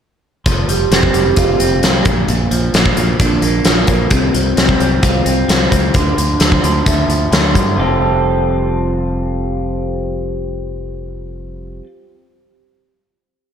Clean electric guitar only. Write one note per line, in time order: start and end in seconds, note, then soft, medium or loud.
0.46 1.85 F3 medium
0.69 1.13 G3 medium
0.91 1.58 C4 medium
1.14 1.81 G3 medium
1.37 3.19 F4 medium
1.59 2.05 C4 medium
1.82 2.05 G3 medium
2.06 2.27 A#2 medium
2.28 3.42 A#2 medium
2.51 2.96 F3 medium
2.75 3.41 A#3 medium
2.97 3.65 F3 medium
3.20 4.11 D4 medium
3.42 3.88 A#3 medium
3.66 4.34 F3 medium
3.89 4.11 A#3 medium
4.11 5.26 C3 medium
4.35 4.80 F3 medium
4.57 5.24 C4 medium
4.80 5.48 F3 medium
5.02 7.78 F4 medium
5.25 5.70 C4 medium
5.48 6.39 F3 medium
5.71 5.94 C4 medium
5.94 6.15 D3 medium
6.16 6.61 D3 medium
6.39 7.07 F3 medium
6.62 7.30 D3 medium
6.85 7.77 A3 medium
7.08 7.53 F3 medium
7.31 7.75 D3 medium
7.54 7.75 F3 medium
7.76 11.82 F3 medium
7.76 11.84 G3 medium
7.76 11.84 C4 medium
7.76 11.85 F4 medium
7.76 11.86 A4 medium